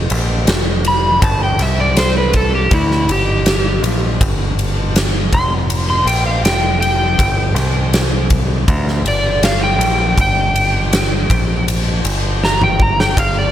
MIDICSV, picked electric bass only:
0, 0, Header, 1, 2, 480
1, 0, Start_track
1, 0, Tempo, 745342
1, 787, Time_signature, 4, 2, 24, 8
1, 8704, End_track
2, 0, Start_track
2, 0, Title_t, "Picked electric bass"
2, 0, Program_c, 0, 34
2, 72, Note_on_c, 0, 34, 95
2, 293, Note_off_c, 0, 34, 0
2, 304, Note_on_c, 0, 29, 73
2, 760, Note_off_c, 0, 29, 0
2, 786, Note_on_c, 0, 31, 91
2, 1010, Note_off_c, 0, 31, 0
2, 1020, Note_on_c, 0, 36, 91
2, 1718, Note_off_c, 0, 36, 0
2, 1745, Note_on_c, 0, 38, 86
2, 1969, Note_off_c, 0, 38, 0
2, 1988, Note_on_c, 0, 31, 87
2, 2442, Note_off_c, 0, 31, 0
2, 2464, Note_on_c, 0, 34, 91
2, 2689, Note_off_c, 0, 34, 0
2, 2710, Note_on_c, 0, 31, 88
2, 3404, Note_off_c, 0, 31, 0
2, 3432, Note_on_c, 0, 29, 89
2, 3885, Note_off_c, 0, 29, 0
2, 3899, Note_on_c, 0, 34, 87
2, 4127, Note_off_c, 0, 34, 0
2, 4146, Note_on_c, 0, 29, 86
2, 4602, Note_off_c, 0, 29, 0
2, 4625, Note_on_c, 0, 31, 101
2, 4851, Note_off_c, 0, 31, 0
2, 4859, Note_on_c, 0, 36, 91
2, 5559, Note_off_c, 0, 36, 0
2, 5589, Note_on_c, 0, 38, 105
2, 5813, Note_off_c, 0, 38, 0
2, 5821, Note_on_c, 0, 31, 87
2, 6280, Note_off_c, 0, 31, 0
2, 6300, Note_on_c, 0, 34, 94
2, 6528, Note_off_c, 0, 34, 0
2, 6551, Note_on_c, 0, 31, 89
2, 7246, Note_off_c, 0, 31, 0
2, 7278, Note_on_c, 0, 34, 84
2, 7730, Note_off_c, 0, 34, 0
2, 7757, Note_on_c, 0, 31, 89
2, 8450, Note_off_c, 0, 31, 0
2, 8482, Note_on_c, 0, 31, 91
2, 8701, Note_off_c, 0, 31, 0
2, 8704, End_track
0, 0, End_of_file